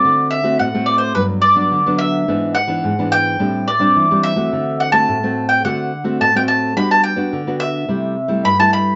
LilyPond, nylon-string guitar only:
\new Staff \with { instrumentName = "Nylon-string guitar" } { \time 4/4 \key g \major \tempo 4 = 107 << { <a c' fis'>8. <a c' fis'>8 <a c' fis'>8. <fis b d'>8 r16 <fis b d'>8 <fis b d'>8. | <e b d'>8 r16 <e b d'>8 <e b d'>8. <g c' d'>8 r16 <g c' d'>8 <g c' d'>8 <a c' fis'>16~ | <a c' fis'>8. <a c' fis'>8 <a c' fis'>8. <a c' fis'>8 r16 <a c' fis'>8 <a c' fis'>8. | <b d' fis'>8. <b d' fis'>8 <b d' fis'>8. <g a e'>8 r16 <g a e'>8 <g a e'>8. | } \\ { d4 a,4 g,4 d4 | gis,4 gis,4 a,4 e4 | d4 a,4 d4 a,4 | g4 d4 c4 g,4 | } >> }